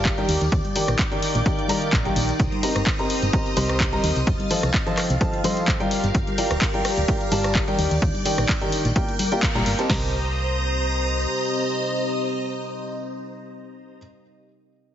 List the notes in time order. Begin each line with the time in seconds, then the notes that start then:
Already playing: G1 G3 F4 G4 A#4 D5 F5 A5 D6
0.05 kick, clap, closed hi-hat
0.18 D#3 D#4 G4 A#4 D5 G5, closed hi-hat, high conga
0.28 D#2 D#4 D5 D6 G6, open hi-hat, tambourine
0.41 D#2, closed hi-hat, tambourine
0.46 A#4
0.52 D#2, kick, closed hi-hat, tambourine
0.64 G5, closed hi-hat, high conga
0.75 D#3 D#4 G4 A#4 D5 G5, open hi-hat, tambourine
0.80 F5
0.87 A#1, cross-stick, closed hi-hat, tambourine
0.99 kick, clap, closed hi-hat, tambourine
1.12 D#3 D#4 G4 A#4 D5 G5, closed hi-hat
1.22 open hi-hat, tambourine
1.35 A#1, closed hi-hat, tambourine
1.46 D#3 D#4 G4 A#4 D5 G5, kick, closed hi-hat, tambourine
1.59 closed hi-hat
1.68 D#3 D#4 G4 A#4 D5 A#5, open hi-hat, tambourine, high conga
1.81 closed hi-hat, tambourine
1.93 A#1, kick, clap, closed hi-hat
2.05 D#3 D#4 G4 A#4 D5 G5, closed hi-hat, high conga
2.16 A#1, open hi-hat, tambourine
2.29 tambourine
2.40 C2 C4 C5 A#5 D#6, kick, closed hi-hat, tambourine
2.51 G4, closed hi-hat, high conga
2.63 C4 G4 A#4 C5 D#5 A#5, open hi-hat, tambourine
2.74 G1 D#5, cross-stick, closed hi-hat, tambourine
2.86 kick, clap, closed hi-hat, tambourine
2.99 C4 G4 A#4 C5 D#5 A#5, closed hi-hat
3.10 open hi-hat, tambourine
3.22 G1, closed hi-hat, tambourine
3.33 C4 G4 A#4 C5 D#5 A#5, kick, closed hi-hat
3.46 closed hi-hat
3.56 C2 C4 G4 A#4 C5 D#5 C6, open hi-hat, tambourine, high conga
3.69 cross-stick, closed hi-hat, tambourine
3.80 kick, clap, closed hi-hat, tambourine
3.93 C4 G4 A#4 C5 D#5 A#5, closed hi-hat, high conga
4.04 D#2, open hi-hat, tambourine
4.16 C2, closed hi-hat, tambourine
4.26 F1 F4 F5 A6, kick, closed hi-hat, tambourine
4.37 C5, closed hi-hat, high conga
4.48 F3 F4 A4 C5 D#5 G5 A5, open hi-hat, tambourine
4.63 C2, cross-stick, closed hi-hat, tambourine
4.74 kick, clap, closed hi-hat
4.87 F3 F4 A4 C5 D#5 A5, closed hi-hat
4.97 cross-stick, clap, open hi-hat, tambourine
5.10 C2, closed hi-hat, tambourine
5.21 F3 F4 A4 C5 D#5 A5, kick, closed hi-hat, tambourine
5.33 closed hi-hat
5.44 F3 F4 A4 C5 D#5 C6, open hi-hat, tambourine, high conga
5.57 closed hi-hat, tambourine
5.68 kick, clap, closed hi-hat, tambourine
5.80 G3 F4 G4 A#4 D5 G5, closed hi-hat, high conga
5.91 G4 A#4, open hi-hat, tambourine
6.04 G1, closed hi-hat, tambourine
6.11 G1 D5, kick, closed hi-hat, tambourine
6.27 closed hi-hat, high conga
6.34 G3 G4 A#4 D6, tambourine
6.38 F4 D5 G5, open hi-hat
6.51 D1, cross-stick, closed hi-hat, tambourine
6.61 kick, clap, closed hi-hat, tambourine
6.74 G3 F4 G4 A#4 D5 G5, closed hi-hat
6.85 cross-stick, open hi-hat, tambourine
6.97 D1, closed hi-hat, tambourine
7.08 G3 F4 G4 A#4 D5 G5, kick, closed hi-hat, tambourine
7.21 closed hi-hat
7.31 G1 G3 F4 G4 A#4 D5 A5, open hi-hat, tambourine, high conga
7.44 cross-stick, closed hi-hat, tambourine
7.55 kick, clap, closed hi-hat
7.68 D#3 D#4 G4 A#4 D5 G5, closed hi-hat, high conga
7.79 D#2 D5 D6 G6, open hi-hat, tambourine
7.89 D#2 A#4 G5, closed hi-hat, tambourine
8.02 D#2, kick, closed hi-hat, tambourine
8.14 closed hi-hat, high conga
8.25 D#3 D#4 G4 A#4 D5 F5 G5, open hi-hat, tambourine
8.38 A#1, cross-stick, closed hi-hat, tambourine
8.49 kick, clap, closed hi-hat
8.61 D#3 D#4 G4 A#4 D5 G5, closed hi-hat
8.72 open hi-hat, tambourine
8.85 A#1, closed hi-hat, tambourine
8.96 A#3 F4 G4 A#4 D5 G5, kick, closed hi-hat
9.08 closed hi-hat
9.19 open hi-hat, tambourine, high conga
9.32 A#3 F4 G4 A#4 D5 G5, closed hi-hat, tambourine
9.43 kick, clap, closed hi-hat
9.55 A#1 A#3 F4 G4 A#4 D5 A#5, closed hi-hat, high conga
9.66 G1, open hi-hat, tambourine
9.79 C4 G4 A#4 C5 D#5 A5, closed hi-hat, tambourine
9.90 C2 C4 G4 A#4 C5 D#5 A#5 D#6, kick, snare, open hi-hat
9.97 G4
10.11 D#5